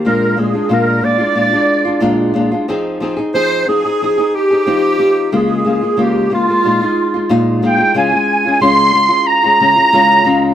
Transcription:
0.05 0.35 A#2 medium
0.05 0.36 G#3 medium
0.05 0.37 D4 medium
0.05 0.38 F4 medium
0.05 0.40 A#4 medium
0.36 0.54 A#2 medium
0.36 0.54 G#3 medium
0.36 0.53 D4 medium
0.36 0.52 F4 medium
0.36 0.74 G#4 medium
0.53 0.68 G#3 soft
0.53 0.69 D4 soft
0.53 0.70 F4 soft
0.69 1.01 A#2 medium
0.69 1.02 G#3 medium
0.69 1.02 D4 medium
0.69 1.03 F4 medium
0.69 1.06 A#4 medium
1.02 1.19 A#2 medium
1.02 1.20 G#3 soft
1.02 1.18 D4 soft
1.02 1.17 F4 medium
1.02 2.36 D5 medium
1.18 1.34 G#3 soft
1.18 1.36 D4 soft
1.18 1.36 F4 medium
1.35 1.52 A#2 medium
1.35 1.53 G#3 medium
1.35 1.52 D4 medium
1.35 1.49 F4 medium
1.51 1.86 G#3 soft
1.51 1.86 D4 soft
1.51 1.84 F4 medium
1.85 2.00 G#3 soft
1.85 2.01 D4 soft
1.85 2.01 F4 medium
2.00 2.32 A#2 medium
2.00 2.34 G#3 medium
2.00 2.35 D4 medium
2.00 2.35 F4 loud
2.34 2.51 A#2 medium
2.34 2.52 G#3 medium
2.34 2.52 D4 medium
2.34 2.50 F4 medium
2.52 2.68 G#3 soft
2.52 2.68 D4 soft
2.52 2.68 F4 medium
2.68 2.99 F3 medium
2.68 3.00 C4 medium
2.68 3.01 D#4 medium
2.68 3.02 G#4 medium
3.00 3.17 F3 medium
3.00 3.18 C4 medium
3.00 3.17 D#4 medium
3.00 3.15 G#4 medium
3.17 3.33 C4 soft
3.17 3.34 D#4 soft
3.17 3.34 G#4 medium
3.34 3.66 F3 medium
3.34 3.67 C4 medium
3.34 3.67 D#4 medium
3.34 3.68 G#4 medium
3.34 3.65 C5 loud
3.67 3.84 F3 soft
3.67 3.84 C4 medium
3.67 3.85 D#4 soft
3.67 4.36 G#4 loud
3.67 3.84 G#4 medium
3.85 4.02 C4 soft
3.85 4.01 D#4 soft
3.85 4.01 G#4 soft
4.02 4.18 F3 soft
4.02 4.18 C4 medium
4.02 4.18 D#4 medium
4.02 4.17 G#4 medium
4.18 4.52 C4 soft
4.18 4.51 D#4 medium
4.18 4.49 G#4 medium
4.35 5.33 G4 loud
4.51 4.66 C4 soft
4.51 4.66 D#4 soft
4.51 4.67 G#4 soft
4.67 4.98 F3 medium
4.67 4.98 C4 medium
4.67 4.99 D#4 medium
4.99 5.32 F3 medium
4.99 5.32 C4 medium
4.99 5.33 D#4 medium
5.32 5.63 C#3 medium
5.32 5.65 G#3 medium
5.32 5.66 A#3 medium
5.32 5.66 F4 medium
5.32 6.03 G#4 medium
5.65 5.81 C#3 medium
5.65 5.82 G#3 medium
5.65 5.82 A#3 medium
5.65 5.80 F4 medium
5.81 5.96 G#3 soft
5.81 5.97 A#3 soft
5.81 5.98 F4 soft
5.97 6.29 C#3 medium
5.97 6.30 G#3 medium
5.97 6.31 A#3 medium
5.97 6.31 F4 medium
6.02 6.33 G4 medium
6.30 6.47 C#3 soft
6.30 6.47 G#3 medium
6.30 6.48 A#3 soft
6.30 6.47 F4 medium
6.34 7.61 F4 medium
6.48 6.64 G#3 soft
6.48 6.65 A#3 soft
6.48 6.64 F4 soft
6.64 6.80 A#2 medium
6.64 6.81 G#3 medium
6.64 6.82 D#4 medium
6.64 6.80 F4 medium
6.82 7.15 G#3 soft
6.82 7.14 D#4 soft
6.82 7.13 F4 medium
7.14 7.29 G#3 soft
7.14 7.30 D#4 soft
7.14 7.30 F4 medium
7.30 7.61 A#2 medium
7.30 7.62 G#3 medium
7.30 7.63 D#4 loud
7.30 7.63 F4 loud
7.62 7.79 A#2 medium
7.62 7.80 G#3 medium
7.62 7.79 D#4 medium
7.62 7.77 F4 medium
7.62 7.95 G5 medium
7.78 7.94 G#3 medium
7.78 7.95 D#4 medium
7.78 7.95 F4 medium
7.94 8.12 C#3 medium
7.94 8.12 G#3 medium
7.94 8.12 C#4 medium
7.94 8.10 F4 medium
7.94 8.59 G#5 medium
8.12 8.46 G#3 soft
8.12 8.45 C#4 soft
8.12 8.43 F4 medium
8.45 8.60 G#3 medium
8.45 8.61 C#4 soft
8.45 8.61 F4 soft
8.60 8.92 C#3 medium
8.60 8.93 G#3 medium
8.60 8.93 C#4 medium
8.60 8.94 F4 medium
8.60 9.28 C6 loud
8.93 9.10 C#3 medium
8.93 9.10 G#3 medium
8.93 9.09 C#4 soft
8.93 9.08 F4 medium
9.09 9.44 G#3 soft
9.09 9.43 C#4 soft
9.09 9.42 F4 medium
9.27 10.54 A#5 loud
9.43 9.60 G#3 medium
9.43 9.60 C#4 medium
9.43 9.60 F4 medium
9.60 9.77 C#3 medium
9.60 9.77 G#3 medium
9.60 9.76 C#4 medium
9.60 9.75 F4 medium
9.76 9.91 G#3 soft
9.76 9.92 C#4 soft
9.76 9.93 F4 soft
9.92 10.23 C#3 medium
9.92 10.24 G#3 medium
9.92 10.25 C#4 medium
9.92 10.26 F4 loud
10.24 10.54 C#3 medium
10.24 10.54 G#3 medium
10.24 10.54 C#4 medium
10.24 10.54 F4 medium

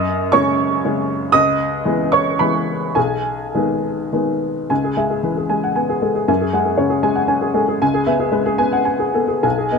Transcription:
0.00 0.31 F#2 medium
0.00 0.29 D#5 medium
0.00 0.32 D#6 medium
0.32 0.80 C#3 soft
0.32 0.80 G#3 soft
0.32 0.80 C#4 medium
0.32 1.05 C#5 medium
0.32 1.09 C#6 medium
0.85 1.31 C#3 soft
0.85 1.31 G#3 soft
0.85 1.31 C#4 soft
1.32 1.84 C#2 medium
1.32 2.08 D#5 medium
1.32 2.11 D#6 loud
1.85 2.36 E3 soft
1.85 2.35 G#3 soft
1.85 2.36 B3 soft
2.12 2.38 C#5 medium
2.12 2.39 C#6 medium
2.39 2.92 E3 soft
2.39 2.92 G#3 soft
2.39 2.93 B3 soft
2.39 2.92 B4 medium
2.39 2.96 B5 medium
2.95 3.52 B1 soft
2.95 4.09 G#4 soft
2.95 4.12 G#5 medium
3.55 4.09 D#3 soft
3.55 4.09 G#3 soft
3.55 4.09 B3 soft
4.13 4.66 D#3 soft
4.13 4.66 G#3 soft
4.13 4.67 B3 soft
4.70 6.25 C#2 soft
4.70 4.91 G#5 soft
4.84 5.05 G#4 soft
4.97 5.40 G#3 soft
4.97 5.18 E5 soft
5.10 5.32 G#4 soft
5.23 5.66 E3 soft
5.23 5.45 B4 soft
5.37 5.59 G#4 soft
5.49 5.92 G#3 soft
5.49 5.71 G#5 soft
5.64 5.77 F#5 soft
5.76 6.18 B3 soft
5.76 5.97 G#5 soft
5.89 6.10 G#4 soft
6.02 6.28 G#3 soft
6.02 6.15 A4 soft
6.15 6.28 G#4 soft
6.28 7.77 F#2 soft
6.28 6.49 G#5 soft
6.41 6.62 G#4 soft
6.53 6.95 G#3 soft
6.53 6.75 F#5 soft
6.65 6.87 G#4 soft
6.77 7.19 C#3 soft
6.77 6.99 C#5 soft
6.90 7.11 G#4 soft
7.03 7.45 G#3 soft
7.03 7.24 G#5 medium
7.15 7.29 F#5 soft
7.28 7.70 C#4 soft
7.28 7.50 G#5 soft
7.41 7.63 G#4 soft
7.54 7.81 G#3 soft
7.54 7.68 A4 soft
7.68 7.81 G#4 soft
7.82 9.40 C#2 medium
7.82 8.02 G#5 medium
7.94 8.15 G#4 medium
8.06 8.49 B3 soft
8.06 8.28 E5 medium
8.20 8.41 G#4 soft
8.32 8.75 G#3 soft
8.32 8.54 B4 soft
8.46 8.68 G#4 medium
8.58 9.03 B3 soft
8.58 8.81 G#5 medium
8.72 8.87 F#5 soft
8.85 9.09 G#5 soft
8.99 9.23 G#4 soft
9.14 9.44 B3 soft
9.14 9.29 A4 soft
9.28 9.43 G#4 soft
9.43 9.79 B1 soft
9.43 9.67 G#5 soft
9.58 9.79 G#4 soft
9.72 9.79 B3 soft
9.72 9.79 D#5 soft

